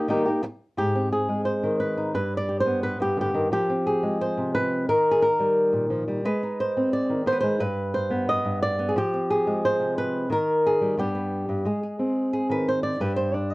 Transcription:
0.08 0.25 D#3 medium
0.08 0.26 G3 medium
0.08 0.26 A#3 medium
0.08 0.26 D#4 medium
0.08 0.24 G4 medium
0.25 0.42 A#3 soft
0.25 0.42 D#4 soft
0.25 0.42 G4 medium
0.42 muted nylon-string guitar stroke medium
0.77 2.13 G#2 medium
0.77 1.12 G4 medium
0.95 2.13 C4 soft
1.13 1.45 G#4 medium
1.29 2.13 G#3 medium
1.45 1.79 C5 medium
1.63 2.13 D#3 medium
1.80 2.13 B4 medium
1.97 2.13 D#4 soft
2.14 2.99 G2 medium
2.14 2.37 B4 medium
2.37 2.60 D5 medium
2.49 3.01 G4 soft
2.60 2.83 C5 medium
2.66 3.50 B3 medium
2.83 3.01 B4 medium
3.00 3.52 G2 medium
3.00 3.18 G4 medium
3.17 3.34 D3 medium
3.17 3.52 G4 medium
3.34 3.51 D#3 medium
3.52 4.87 F3 medium
3.52 4.21 G4 medium
3.70 4.87 C4 soft
3.87 4.55 G#4 medium
4.03 4.87 G#3 medium
4.21 4.54 C5 medium
4.37 4.87 C3 medium
4.55 4.89 B4 loud
4.89 6.23 D#3 medium
4.89 5.21 A#4 medium
5.12 5.23 G#4 medium
5.22 6.25 A#4 medium
5.40 5.90 G3 medium
5.73 6.22 A#2 medium
5.90 6.07 F3 medium
6.08 6.25 G3 medium
6.25 7.42 G#3 medium
6.25 6.93 B4 medium
6.43 7.59 D#4 soft
6.60 6.93 C5 medium
6.77 7.26 C4 medium
6.93 7.27 D5 medium
7.09 7.59 D#3 medium
7.26 7.43 B3 medium
7.26 7.39 C5 loud
7.32 7.59 B4 medium
7.40 7.61 G#3 medium
7.40 7.61 C5 medium
7.60 8.43 G2 medium
7.60 8.28 B4 medium
7.94 8.28 C5 medium
8.10 8.78 B3 medium
8.29 8.62 D#5 loud
8.45 8.96 G2 medium
8.62 8.96 D5 loud
8.79 8.94 B3 soft
8.89 8.96 G#4 medium
8.96 10.29 F3 medium
8.96 9.64 G4 medium
9.14 10.29 C4 soft
9.30 9.98 G#4 medium
9.47 10.29 G#3 medium
9.65 9.97 C5 loud
9.80 10.29 C3 medium
9.98 10.31 B4 loud
10.30 10.96 D#3 medium
10.30 10.99 A#4 medium
10.66 10.99 G#4 medium
10.81 10.96 G3 medium
10.97 11.48 G2 medium
10.97 11.64 G3 soft
10.97 11.14 B3 soft
10.97 11.66 D4 soft
10.97 11.66 G4 medium
11.15 11.64 B3 soft
11.49 11.66 G2 medium
11.65 12.99 G#3 medium
11.65 11.82 G#4 soft
11.83 11.98 G#4 soft
11.99 12.99 C4 soft
11.99 12.32 G#4 soft
12.33 12.50 G#4 medium
12.49 12.99 D#3 medium
12.49 12.68 B4 medium
12.69 12.83 C5 medium
12.83 13.01 D5 medium
13.00 13.54 G2 medium
13.00 13.33 D4 soft
13.00 13.54 G4 soft
13.00 13.16 B4 medium
13.16 13.34 C5 medium
13.34 13.54 D4 medium
13.34 13.51 D5 medium
13.51 13.54 D#5 loud

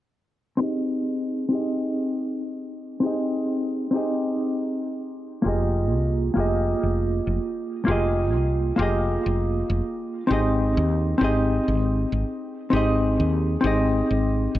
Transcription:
0.57 1.47 C4 medium
0.57 1.48 D#4 medium
0.57 1.48 G4 medium
0.62 1.49 G#4 medium
1.48 2.98 C4 medium
1.48 2.99 D#4 medium
1.48 3.00 G4 medium
1.53 3.01 G#4 medium
1.53 3.01 D#5 medium
3.00 3.89 C4 medium
3.00 3.90 D#4 medium
3.00 3.91 G4 medium
3.05 3.92 G#4 medium
3.05 3.92 D#5 medium
3.91 5.41 C4 medium
3.91 5.42 D#4 medium
3.91 5.42 G4 medium
3.96 5.43 G#4 medium
3.96 5.44 D#5 medium
5.42 5.93 F1 medium
5.42 6.32 A#3 medium
5.42 6.33 F4 medium
5.42 6.33 G4 medium
5.47 6.34 G#4 medium
5.47 6.35 D#5 medium
5.93 6.29 C2 medium
6.34 6.74 F1 medium
6.34 7.83 A#3 medium
6.34 7.84 F4 medium
6.34 7.85 G4 medium
6.39 7.86 G#4 medium
6.39 7.87 D#5 medium
6.83 7.19 F1 medium
7.27 7.38 F1 medium
7.85 8.35 F1 medium
7.85 8.74 A#3 medium
7.85 8.75 F4 medium
7.85 8.76 G4 medium
7.90 8.77 G#4 medium
7.90 8.77 D#5 medium
8.35 8.71 C2 medium
8.76 9.16 F1 medium
8.76 10.26 A#3 medium
8.76 10.27 F4 medium
8.76 10.27 G4 medium
8.81 10.28 G#4 medium
8.81 10.29 D#5 medium
9.26 9.62 F1 medium
9.70 9.80 F1 medium
10.27 10.79 G#1 medium
10.27 11.17 C4 medium
10.27 11.17 D#4 medium
10.27 11.18 G4 medium
10.32 11.19 G#4 medium
10.32 11.20 D#5 medium
10.77 11.13 D#2 medium
11.18 11.58 G#1 medium
11.18 12.68 C4 medium
11.18 12.69 D#4 medium
11.18 12.70 G4 medium
11.23 12.70 G#4 medium
11.23 12.71 D#5 medium
11.68 12.04 G#1 medium
12.12 12.23 G#1 medium
12.70 13.21 G#1 medium
12.70 13.59 C4 medium
12.70 13.60 D#4 medium
12.70 13.61 G4 medium
12.75 13.61 G#4 medium
12.75 13.62 D#5 medium
13.20 13.56 D#2 medium
13.61 14.01 G#1 medium
13.61 14.59 C4 medium
13.61 14.59 D#4 medium
13.61 14.59 G4 medium
13.65 14.59 G#4 medium
13.65 14.59 D#5 medium
14.11 14.47 G#1 medium
14.55 14.59 G#1 medium

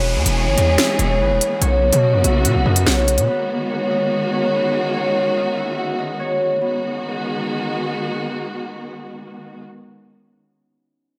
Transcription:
0.00 0.17 E1 loud
0.00 1.60 E3 medium
0.00 1.60 G#3 medium
0.00 1.20 B3 medium
0.00 6.58 B3 medium
0.00 0.37 C#4 medium
0.00 0.58 D#4 medium
0.00 1.56 F#4 medium
0.00 1.60 G#4 medium
0.00 1.20 B4 loud
0.00 0.36 C#5 medium
0.00 0.57 D#5 medium
0.00 0.72 F#5 medium
0.00 downlifter medium
0.16 0.26 E2 loud
0.26 0.48 E1 loud
0.26 closed hi-hat medium
0.37 0.99 C#4 medium
0.37 0.99 C#5 medium
0.47 0.57 G#1 loud
0.57 0.77 E2 loud
0.57 0.84 D#4 medium
0.57 0.84 D#5 medium
0.57 closed hi-hat medium
0.78 2.09 E4 medium
0.78 2.09 E5 medium
0.78 finger snap medium
0.78 snare loud
0.78 closed hi-hat medium
0.99 1.21 E1 loud
0.99 1.62 C#4 medium
0.99 1.61 C#5 medium
0.99 closed hi-hat medium
1.20 1.32 G#1 medium
1.20 3.28 B3 medium
1.20 3.25 B4 medium
1.30 1.40 E1 loud
1.41 closed hi-hat medium
1.61 1.92 B1 loud
1.61 3.27 C#3 medium
1.61 3.26 F#3 medium
1.61 2.87 C#4 medium
1.61 3.27 F#4 medium
1.61 2.86 C#5 loud
1.61 closed hi-hat medium
1.93 2.15 B2 loud
1.93 closed hi-hat medium
2.03 2.30 D#4 medium
2.03 2.30 D#5 medium
2.14 2.24 F#2 loud
2.24 2.46 B1 loud
2.24 2.72 E4 medium
2.24 2.72 E5 medium
2.24 closed hi-hat medium
2.45 2.57 B2 loud
2.45 4.12 F#4 medium
2.45 4.05 F#5 medium
2.45 closed hi-hat medium
2.55 2.65 B1 medium
2.66 2.86 F#2 loud
2.66 3.91 D#4 medium
2.66 3.90 D#5 medium
2.76 closed hi-hat medium
2.87 3.19 B1 loud
2.87 3.70 C#4 medium
2.87 3.69 C#5 medium
2.87 finger snap medium
2.87 snare loud
3.08 closed hi-hat medium
3.18 3.28 B2 loud
3.18 closed hi-hat medium
3.28 6.58 D#3 medium
3.28 6.58 G#3 medium
3.28 4.54 B3 medium
3.28 6.58 F#4 medium
3.28 4.53 B4 loud
3.70 4.33 C#4 medium
3.70 4.32 C#5 medium
3.90 5.37 D#4 medium
3.90 5.36 D#5 medium
4.11 5.78 F#4 medium
4.11 5.72 F#5 medium
4.33 4.95 C#4 medium
4.33 4.94 C#5 medium
4.53 6.61 B3 medium
4.53 6.58 B4 medium
4.95 6.20 C#4 medium
4.95 6.19 C#5 loud
5.37 5.63 D#4 medium
5.37 5.63 D#5 medium
5.57 6.05 E4 medium
5.57 6.05 E5 medium
5.78 8.23 F#4 medium
5.78 7.39 F#5 medium
5.99 8.70 D#4 medium
5.99 7.77 D#5 medium
6.20 9.10 C#4 medium
6.20 8.11 C#5 medium
6.61 9.64 D#3 medium
6.61 9.64 G#3 medium
6.61 9.72 B3 medium
6.61 9.64 B3 medium
6.61 9.64 F#4 medium

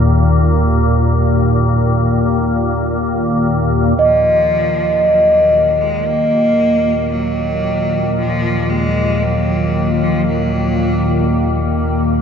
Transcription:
0.00 3.97 D#2 medium
0.00 3.97 A#2 medium
0.00 4.01 A#4 medium
3.98 12.22 D#2 medium
3.98 12.22 A#2 medium
3.98 5.05 F3 medium
3.98 12.22 D#5 medium
5.03 5.83 F#3 medium
5.82 6.08 G#3 medium
6.07 7.13 A#3 loud
7.12 8.18 F#3 medium
8.20 8.70 F3 medium
8.69 9.25 G#3 medium
8.69 8.71 A#3 medium
9.23 10.05 F#3 medium
10.03 10.27 F3 medium
10.28 11.30 F#3 medium

